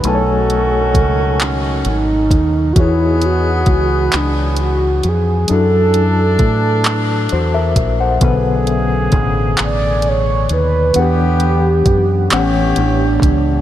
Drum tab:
HH |xxxxxx|xxxxxx|xxxxxx|xxxxxx|
CP |---x--|---x--|---x--|---x--|
BD |--o--o|o-o---|--o--o|o-o---|

HH |xxxxxx|
CP |---x--|
BD |--o--o|